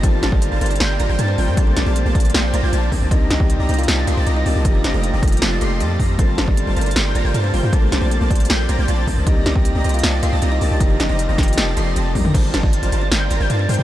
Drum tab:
CC |--------------------------------|--------------------------------|--------------------------------|--------------------------------|
HH |x---x---x---xxxxx---x---x---o---|x---x---x---xxxxx---x---x---o---|x---x---x---xxxxx---x---x---o---|x---x---x---xxxxx---x---x---o---|
SD |----o-----------o---------------|----o-----------o---------------|----o-----------o---------------|----o-----------o---------------|
T1 |--------------------------------|--------------------------------|--------------------------------|--------------------------------|
T2 |--------------------------------|--------------------------------|--------------------------------|--------------------------------|
BD |o-----o-------------------------|o-----------o---------------o---|o-----o-------------------------|o-----------o---------------o---|

CC |--------------------------------|--------------------------------|--------------------------------|--------------------------------|
HH |x---x---x---xxxxx---x---x---o---|x---x---x---xxxxx---x---x---o---|x---x---x---xxxxx---x---x---o---|x---x---x---xxxxx---x---x---o---|
SD |----o-----------o---------------|----o-----------o---------------|----o-----------o---------------|----o-------o---o---------------|
T1 |--------------------------------|--------------------------------|--------------------------------|----------------------------o---|
T2 |--------------------------------|--------------------------------|--------------------------------|------------------------------o-|
BD |o-----o-------------------------|o-----------o---------------o---|o-----o-------------------------|o-----------o---------------o---|

CC |x-------------------------------|
HH |x---x---x-x-x---x---x---x---ox--|
SD |----o-----------o---------------|
T1 |--------------------------------|
T2 |--------------------------------|
BD |o-----o-------------------------|